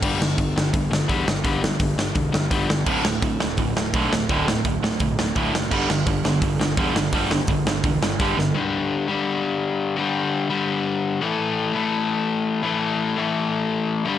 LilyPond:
<<
  \new Staff \with { instrumentName = "Distorted electric guitar" } { \clef bass \time 4/4 \key g \lydian \tempo 4 = 169 r1 | r1 | <d, a, d>8 <d, a,>8 <d, a,>8 <d, a,>8 <d, a,>8 <d, a,>8 <d, a, d>8 <d, a,>8 | <d, a, d>8 <d, a,>8 <d, a,>8 <d, a,>8 <d, a,>8 <d, a,>8 <d, a, d>8 <d, a,>8 |
<g, d g>8 <g, d>8 <g, d>8 <g, d>8 <g, d>8 <g, d>8 <g, d g>8 <g, d>8 | <g, d g>8 <g, d>8 <g, d>8 <g, d>8 <g, d>8 <g, d>8 <g, d g>8 <g, d>8 | r1 | r1 |
r1 | r1 | }
  \new Staff \with { instrumentName = "Overdriven electric guitar" } { \clef bass \time 4/4 \key g \lydian <g, d g>8 <g, d>8 <g, d>8 <g, d>8 <g, d>8 <g, d>8 <g, d g>8 <g, d>8 | <g, d g>8 <g, d>8 <g, d>8 <g, d>8 <g, d>8 <g, d>8 <g, d g>8 <g, d>8 | <d, a, d>8 <d, a,>8 <d, a,>8 <d, a,>8 <d, a,>8 <d, a,>8 <d, a, d>8 <d, a,>8 | <d, a, d>8 <d, a,>8 <d, a,>8 <d, a,>8 <d, a,>8 <d, a,>8 <d, a, d>8 <d, a,>8 |
<g, d g>8 <g, d>8 <g, d>8 <g, d>8 <g, d>8 <g, d>8 <g, d g>8 <g, d>8 | <g, d g>8 <g, d>8 <g, d>8 <g, d>8 <g, d>8 <g, d>8 <g, d g>8 <g, d>8 | <g, d g>4. <g, d g>2~ <g, d g>8 | <g, d g>4. <g, d g>2 <a, e a>8~ |
<a, e a>4 <a, e a>2~ <a, e a>8 <a, e a>8~ | <a, e a>4 <a, e a>2~ <a, e a>8 <g, d g>8 | }
  \new Staff \with { instrumentName = "Picked electric bass" } { \clef bass \time 4/4 \key g \lydian g,,8 g,,8 g,,8 g,,8 g,,8 g,,8 e,8 g,,8 | g,,4 g,,8 g,,8 e,,8 g,,8 g,,8 g,,8 | d,,8 d,,8 d,,8 d,,8 d,,8 d,,8 b,,8 d,,8 | d,,4 d,,8 d,,8 b,,8 d,,8 d,,8 fis,,8 |
g,,8 g,,8 g,,8 g,,8 g,,8 g,,8 e,8 g,,8 | g,,4 g,,8 g,,8 e,,8 g,,8 g,,8 g,,8 | r1 | r1 |
r1 | r1 | }
  \new DrumStaff \with { instrumentName = "Drums" } \drummode { \time 4/4 <cymc bd>8 sn8 <hho bd>8 sn8 <hho bd>8 sn8 <hho bd>8 sn8 | <hho bd>8 sn8 <hho bd>8 sn8 <hho bd>8 sn8 <hho bd>8 sn8 | <cymc bd>8 sn8 <hho bd>8 sn8 <hho bd>8 sn8 <hho bd>8 sn8 | <hho bd>8 sn8 <hho bd>8 sn8 <hho bd>8 sn8 <hho bd>8 sn8 |
<cymc bd>8 sn8 <hho bd>8 sn8 <hho bd>8 sn8 <hho bd>8 sn8 | <hho bd>8 sn8 <hho bd>8 sn8 <hho bd>8 sn8 <hho bd>8 sn8 | r4 r4 r4 r4 | r4 r4 r4 r4 |
r4 r4 r4 r4 | r4 r4 r4 r4 | }
>>